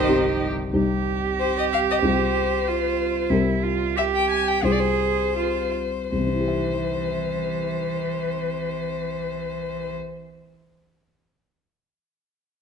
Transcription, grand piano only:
0.00 0.71 C2 medium
0.00 0.71 C3 medium
0.08 0.72 C4 soft
0.08 0.72 D#4 soft
0.08 0.72 G4 soft
0.73 1.99 C2 soft
0.73 1.99 C4 soft
0.73 1.99 D#4 soft
0.73 2.00 G4 soft
2.02 3.27 C2 soft
2.02 3.27 C4 soft
2.02 3.27 F4 soft
2.02 3.27 G#4 soft
3.30 4.59 C2 soft
3.30 4.59 C4 soft
3.30 4.60 G4 soft
3.30 4.60 A#4 soft
4.63 6.07 C2 soft
4.63 6.07 C4 soft
4.63 6.08 F4 soft
4.63 6.08 G#4 soft
6.12 9.93 C2 soft
6.20 10.00 C3 soft
6.27 10.07 C4 soft
6.34 10.14 E4 soft
6.40 10.21 G4 soft
6.48 10.28 E5 soft

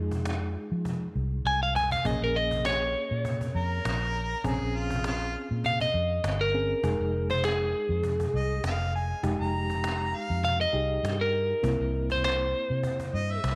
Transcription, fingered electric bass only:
0.00 0.55 F2 medium
0.72 1.07 F3 medium
1.15 1.40 C2 medium
1.45 1.93 C2 medium
2.05 2.18 A#1 medium
2.21 2.94 A#1 medium
3.11 3.46 A#2 medium
3.55 3.79 F2 medium
3.85 4.34 A#1 medium
4.44 4.58 A#1 loud
4.61 5.34 A#1 medium
5.51 5.86 A#2 medium
5.94 6.18 F2 medium
6.24 6.73 G1 medium
6.84 6.97 F1 loud
6.99 7.73 F1 medium
7.89 8.25 F2 medium
8.34 8.58 C2 medium
8.64 9.12 F1 medium
9.23 9.37 F1 loud
9.40 10.13 F1 medium
10.30 10.65 F2 medium
10.73 10.97 C2 medium
11.03 11.52 G2 medium
11.64 11.77 C2 loud
11.80 12.53 C2 medium
12.70 13.05 C3 medium
13.13 13.38 G2 medium
13.44 13.55 C2 medium

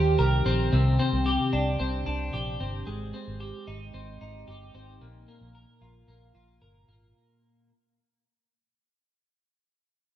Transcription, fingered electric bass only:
0.00 0.16 D#2 medium
0.19 0.43 C2 medium
0.46 0.69 A#1 medium
0.73 0.96 C2 medium
1.13 1.36 C2 medium
1.53 1.77 C2 medium
1.80 2.03 C2 medium
2.07 2.30 C2 medium
2.34 2.57 A#1 medium
2.61 2.84 G1 medium
2.88 3.11 G#1 loud
3.28 3.51 G#1 medium
3.68 3.91 G#1 medium
3.94 4.18 G#1 medium
4.21 4.45 G#1 medium
4.48 4.71 G1 medium
4.75 4.98 G#1 medium
5.01 5.25 A#1 medium
5.41 5.65 A#1 medium
5.81 6.05 A#1 medium
6.08 6.32 A#1 medium
6.35 6.59 A#1 medium
6.62 6.85 G1 medium
6.88 7.12 G#1 medium

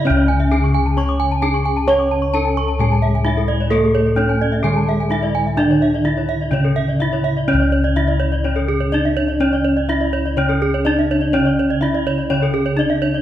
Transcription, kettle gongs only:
0.00 0.46 C#3 medium
0.05 1.38 C#4 medium
0.10 2.78 C#2 loud
0.51 0.59 D4 medium
1.42 1.50 D4 medium
1.88 3.21 C#5 medium
2.34 2.42 D4 medium
2.79 4.13 A2 medium
3.26 3.34 D4 soft
3.71 5.06 A4 medium
4.17 4.25 D4 soft
4.64 6.00 D3 medium
5.10 5.18 D4 soft
5.57 6.04 D4 medium
6.05 6.13 D4 soft
6.51 7.92 C#3 medium
7.00 7.08 D4 soft
7.48 8.88 C#4 medium
7.53 10.36 C#2 loud
7.96 8.04 D4 soft
8.93 9.01 D4 soft
9.40 10.81 C#4 medium
9.89 9.97 D4 soft
10.37 11.78 C#3 medium
10.85 10.93 D4 soft
11.33 12.74 C#4 medium
11.81 11.89 D4 soft
12.30 13.22 C#3 medium
12.79 12.87 D4 soft

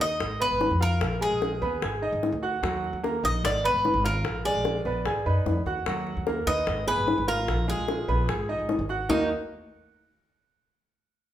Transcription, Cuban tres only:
0.01 0.42 D#5 loud
0.42 0.82 B4 medium
0.82 1.22 A#4 medium
1.22 2.39 G#4 medium
3.25 3.43 D#5 loud
3.45 3.65 D5 loud
3.65 4.05 B4 medium
4.06 4.43 A#4 medium
4.45 5.62 D5 medium
6.47 6.87 D#5 loud
6.88 7.28 B4 medium
7.28 7.66 A#4 medium
7.70 8.86 G#4 medium
9.10 9.28 D#4 medium

